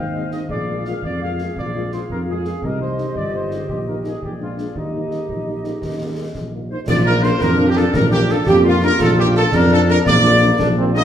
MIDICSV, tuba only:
0, 0, Header, 1, 2, 480
1, 0, Start_track
1, 0, Key_signature, -3, "major"
1, 0, Tempo, 354610
1, 665, Time_signature, 6, 3, 24, 8
1, 9320, Key_signature, -2, "major"
1, 14944, End_track
2, 0, Start_track
2, 0, Title_t, "Tuba"
2, 0, Program_c, 0, 58
2, 0, Note_on_c, 0, 39, 50
2, 482, Note_off_c, 0, 39, 0
2, 663, Note_on_c, 0, 34, 56
2, 1265, Note_off_c, 0, 34, 0
2, 1403, Note_on_c, 0, 41, 48
2, 1996, Note_off_c, 0, 41, 0
2, 2104, Note_on_c, 0, 34, 54
2, 2707, Note_off_c, 0, 34, 0
2, 2835, Note_on_c, 0, 41, 50
2, 3434, Note_off_c, 0, 41, 0
2, 3538, Note_on_c, 0, 36, 52
2, 4146, Note_off_c, 0, 36, 0
2, 4255, Note_on_c, 0, 31, 46
2, 4865, Note_off_c, 0, 31, 0
2, 4980, Note_on_c, 0, 34, 49
2, 5588, Note_off_c, 0, 34, 0
2, 5714, Note_on_c, 0, 34, 42
2, 6316, Note_off_c, 0, 34, 0
2, 6431, Note_on_c, 0, 39, 48
2, 7035, Note_off_c, 0, 39, 0
2, 7160, Note_on_c, 0, 34, 39
2, 7760, Note_off_c, 0, 34, 0
2, 7870, Note_on_c, 0, 39, 45
2, 8474, Note_off_c, 0, 39, 0
2, 8585, Note_on_c, 0, 34, 54
2, 9115, Note_off_c, 0, 34, 0
2, 9297, Note_on_c, 0, 34, 95
2, 9907, Note_off_c, 0, 34, 0
2, 10012, Note_on_c, 0, 41, 88
2, 10624, Note_off_c, 0, 41, 0
2, 10733, Note_on_c, 0, 34, 100
2, 11344, Note_off_c, 0, 34, 0
2, 11454, Note_on_c, 0, 41, 95
2, 12064, Note_off_c, 0, 41, 0
2, 12186, Note_on_c, 0, 34, 99
2, 12789, Note_off_c, 0, 34, 0
2, 12892, Note_on_c, 0, 41, 99
2, 13501, Note_off_c, 0, 41, 0
2, 13626, Note_on_c, 0, 34, 103
2, 14227, Note_off_c, 0, 34, 0
2, 14333, Note_on_c, 0, 34, 96
2, 14939, Note_off_c, 0, 34, 0
2, 14944, End_track
0, 0, End_of_file